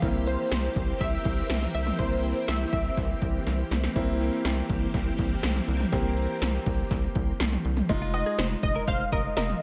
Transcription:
Already playing: G4
0.02 C2 E3 A#3 C4 E4, kick, closed hi-hat
0.27 C5, closed hi-hat
0.51 C2, snare, closed hi-hat
0.76 C2, kick, closed hi-hat
1.01 C2 E5, kick, closed hi-hat
1.25 C2, kick, closed hi-hat
1.50 C2, snare, closed hi-hat
1.62 mid tom
1.74 C2 E5, closed hi-hat
1.87 mid tom
1.99 C2 A#3 C4 E4 C5, kick, closed hi-hat
2.23 closed hi-hat
2.48 C2 E5, snare, closed hi-hat
2.73 C2 E5, kick, closed hi-hat
2.97 C2, kick, closed hi-hat
3.22 C2, kick, closed hi-hat
3.46 C2, snare, closed hi-hat
3.71 C2, snare, closed hi-hat
3.84 snare
3.95 C2 E3 A#3 C4 E4 G4, kick, closed hi-hat, crash
4.20 closed hi-hat
4.45 C2, snare, closed hi-hat
4.70 C2, kick, closed hi-hat
4.94 C2, kick, closed hi-hat
5.18 C2, kick, closed hi-hat
5.43 C2, snare, closed hi-hat
5.56 mid tom
5.68 C2, closed hi-hat
5.80 mid tom
5.92 C2 A#3 C4 G4, kick, closed hi-hat
6.17 closed hi-hat
6.42 C2, snare, closed hi-hat
6.66 C2, kick, closed hi-hat
6.91 C2, kick, closed hi-hat
7.15 C2, kick, closed hi-hat
7.40 C2, snare, closed hi-hat
7.52 mid tom
7.65 C2, closed hi-hat
7.77 mid tom
7.89 F1 G#3 D#4 F4, kick, closed hi-hat, crash
8.02 F4
8.14 D#5, closed hi-hat, cowbell
8.26 G#4
8.38 F1 C5, snare, closed hi-hat
8.63 F1 D#5, kick, closed hi-hat
8.76 A#4
8.88 F1 C5 F5, kick, closed hi-hat
9.12 F1 A#4 D#5, kick, closed hi-hat
9.37 F1 A#4 D#5, snare, closed hi-hat
9.49 mid tom

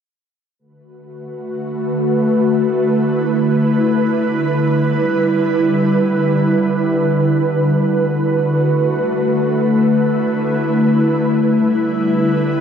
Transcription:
0.59 D3 A3 F#4 B4
2.34 E4
4.09 G3 E4
7.60 A3 F#4
9.35 E4
11.10 D3 G3 E4 B4

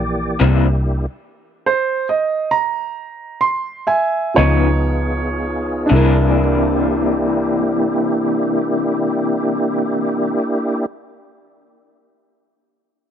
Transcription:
Already playing: A#1 E3 A#3 G4 D5
0.40 C2 C3 E3 A#3 D4 E4 G4
1.66 C5
2.09 D#5
2.51 A#5
3.41 C6
3.87 E5 G#5
4.34 C#2 F3 B3 D#4 F4 G#4 C#5
4.39 C#3 F3 B3
5.86 C3 D4 E4
5.92 C2 E3 A#3 D4 E4 G#4 A#4
5.96 D4
6.44 A#3 D4 E4 G4

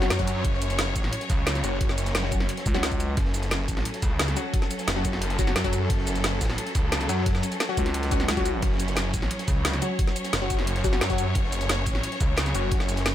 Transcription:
Already playing: F#3 C#4 C#5
0.02 snare, shaker
0.10 F#2, snare, closed hi-hat, ride
0.19 F#3 C#4 F#4, kick, closed hi-hat, shaker
0.27 closed hi-hat, ride, shaker
0.44 F#1, kick, closed hi-hat, ride
0.54 snare
0.62 closed hi-hat, ride, shaker
0.70 snare, closed hi-hat, shaker
0.78 snare, closed hi-hat, ride
0.96 A1, kick, closed hi-hat, ride, shaker
1.03 snare
1.12 closed hi-hat, ride
1.21 snare, closed hi-hat
1.30 C#2, kick, closed hi-hat, ride, shaker
1.47 snare, closed hi-hat, ride
1.55 snare, closed hi-hat, shaker
1.64 F#1 F#3 C#4 F#4, closed hi-hat, ride, shaker
1.81 kick, closed hi-hat, ride
1.89 snare
1.97 closed hi-hat, ride, shaker
2.06 snare, closed hi-hat, shaker
2.15 F#1, snare, closed hi-hat, ride
2.23 F#3 C#4 F#4, snare
2.31 kick, closed hi-hat, ride, shaker
2.40 snare
2.49 closed hi-hat, ride
2.57 snare, closed hi-hat
2.66 C#2, kick, closed hi-hat, ride, shaker
2.74 F#3 C#4 F#4, snare, shaker
2.83 snare, closed hi-hat, ride
2.92 kick, closed hi-hat, shaker
3.00 closed hi-hat, ride, shaker
3.17 F#1 A4, kick, closed hi-hat, ride
3.25 snare
3.34 closed hi-hat, ride, shaker
3.43 snare, closed hi-hat, shaker
3.51 snare, closed hi-hat, ride
3.68 A1, kick, closed hi-hat, ride, shaker
3.77 snare
3.85 closed hi-hat, ride
3.94 snare, closed hi-hat
4.02 C#2, kick, closed hi-hat, ride, shaker
4.19 snare, closed hi-hat, ride
4.28 snare, closed hi-hat, shaker
4.36 F#3 C#4 F#4, closed hi-hat, ride, shaker
4.54 kick, closed hi-hat, ride
4.62 snare
4.70 closed hi-hat, ride, shaker
4.79 snare, closed hi-hat, shaker
4.87 F#1, snare, closed hi-hat, ride
4.96 F#3 C#4 F#4, snare
5.04 kick, closed hi-hat, ride, shaker
5.13 snare
5.21 closed hi-hat, ride
5.30 snare, closed hi-hat
5.39 F#1 F#3 C#4 F#4, kick, closed hi-hat, ride, shaker
5.47 snare, shaker
5.56 F#2, snare, closed hi-hat, ride
5.64 F#3 C#4 F#4, kick, closed hi-hat, shaker
5.72 closed hi-hat, ride, shaker
5.90 F#1, kick, closed hi-hat, ride
5.99 snare
6.07 closed hi-hat, ride, shaker
6.15 snare, closed hi-hat, shaker
6.24 snare, closed hi-hat, ride
6.41 A1, kick, snare, closed hi-hat, ride, shaker
6.45 snare, ride
6.50 snare, ride
6.58 closed hi-hat, ride
6.66 snare, closed hi-hat
6.75 C#2, kick, closed hi-hat, ride, shaker
6.92 snare, closed hi-hat, ride
7.01 snare, closed hi-hat, shaker
7.09 F#2 F#3 C#4 F#4, closed hi-hat, ride, shaker
7.26 kick, closed hi-hat, ride
7.35 snare
7.43 closed hi-hat, ride, shaker
7.51 snare, closed hi-hat, shaker
7.60 snare, closed hi-hat, ride
7.69 F#3 C#4 F#4, snare
7.77 C#2, kick, closed hi-hat, ride, shaker
7.85 snare, closed hi-hat
7.94 closed hi-hat, ride
8.03 snare, closed hi-hat
8.11 F#3 C#4 F#4, kick, closed hi-hat, ride, shaker
8.20 snare, shaker
8.28 C#2, snare, closed hi-hat, ride
8.37 F#3 C#4 F#4, kick, closed hi-hat, shaker
8.45 closed hi-hat, ride, shaker
8.62 F#1 C#5, kick, closed hi-hat, ride
8.72 snare
8.79 closed hi-hat, ride, shaker
8.88 snare, closed hi-hat, shaker
8.96 snare, closed hi-hat, ride
9.14 A1, kick, closed hi-hat, ride, shaker
9.22 snare
9.31 closed hi-hat, ride
9.39 snare, closed hi-hat
9.48 C#2, kick, closed hi-hat, ride, shaker
9.65 snare, closed hi-hat, ride
9.73 snare, closed hi-hat, shaker
9.82 F#3 C#4 F#4, closed hi-hat, ride, shaker
9.99 kick, closed hi-hat, ride
10.07 snare
10.16 closed hi-hat, ride, shaker
10.24 snare, closed hi-hat, shaker
10.33 F#1, snare, closed hi-hat, ride
10.41 F#3 C#4 F#4, snare
10.50 kick, closed hi-hat, ride, shaker
10.59 snare
10.67 closed hi-hat, ride
10.76 snare, closed hi-hat
10.84 F#1 F#3 C#4 F#4, kick, closed hi-hat, ride, shaker
10.93 snare, shaker
11.01 F#2, snare, closed hi-hat, ride
11.10 F#3 C#4 F#4, kick, closed hi-hat, shaker
11.18 closed hi-hat, ride, shaker
11.35 F#1, kick, closed hi-hat, ride
11.44 snare
11.52 closed hi-hat, ride, shaker
11.61 snare, closed hi-hat, shaker
11.69 snare, closed hi-hat, ride
11.86 A1, kick, closed hi-hat, ride, shaker
11.95 snare
12.03 closed hi-hat, ride
12.12 snare, closed hi-hat
12.21 C#2, kick, closed hi-hat, ride, shaker
12.36 snare, closed hi-hat, ride
12.46 snare, closed hi-hat, shaker
12.54 F#1 F#3 C#4 F#4, closed hi-hat, ride, shaker
12.71 kick, closed hi-hat, ride
12.80 snare
12.89 closed hi-hat, ride, shaker
12.97 snare, closed hi-hat, shaker
13.06 F#1, snare, closed hi-hat, ride

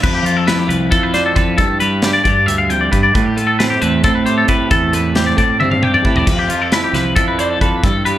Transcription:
0.02 F2 B4, kick, crash
0.14 G4
0.23 F3 F4, closed hi-hat
0.37 A4
0.47 E4 B4, snare, closed hi-hat
0.58 G4
0.68 C2 F3 B4, closed hi-hat
0.91 F2 E4 A4, kick, closed hi-hat
1.03 B4
1.14 C5 D5, snare, closed hi-hat
1.26 A4
1.36 F2 A4 B4, kick, closed hi-hat
1.58 G2 A4, kick, closed hi-hat
1.80 G3 B4, closed hi-hat
2.02 D4 G4, snare, closed hi-hat
2.13 D5
2.24 G2 G3 D5, kick, closed hi-hat
2.46 D2 E5, closed hi-hat
2.58 F5
2.70 F2 G5, closed hi-hat
2.81 D5
2.91 G2 B4, kick, closed hi-hat
3.03 D5
3.14 A2 B4, kick, closed hi-hat
3.26 G4
3.36 A3 F4, closed hi-hat
3.47 A4
3.59 C4 B4, snare, closed hi-hat
3.70 G4
3.82 E2 A3 B4, closed hi-hat
4.04 A2 C4 A4, kick, closed hi-hat
4.15 B4
4.26 G4 C5, closed hi-hat
4.38 A4
4.48 A2 E4 B4, kick, closed hi-hat
4.71 E2 A2 A4, kick, closed hi-hat
4.93 A3 B4, closed hi-hat
5.15 C4 G4, snare, closed hi-hat
5.26 D5
5.37 A2 A3 D5, kick, closed hi-hat
5.60 G2 C4 E5, high tom
5.71 F5, high tom
5.82 G4 G5, mid tom
5.94 D5, mid tom
6.05 A2 E4 B4, kick
6.16 D5, floor tom
6.27 F2 B4, kick, closed hi-hat, crash
6.39 G4
6.49 F3 F4, closed hi-hat
6.62 A4
6.72 E4 B4, snare, closed hi-hat
6.84 G4
6.93 C2 F3 B4, snare, closed hi-hat
7.16 F2 E4 A4, kick, closed hi-hat
7.28 B4
7.39 C5 D5, closed hi-hat
7.50 A4
7.61 F2 A4 B4, kick, closed hi-hat
7.83 G2 A4, kick, closed hi-hat
8.05 G3 B4, closed hi-hat

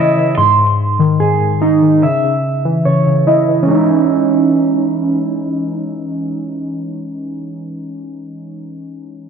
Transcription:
Already playing: C#3 E3 E4 C#5 D#5 E5
0.16 E3
0.38 G#2 C6
0.58 G#2
0.99 D#3
1.20 G#2 G#4
1.41 G#2
1.61 D#4
1.82 D#3
2.03 C#3 E5
2.24 C#3
2.65 E3
2.85 C#3 C#5
3.06 C#3
3.27 E4 D#5
3.48 E3
3.62 E3 C#4
3.66 G#3 D#4
3.70 C#4 E4
3.74 D#4

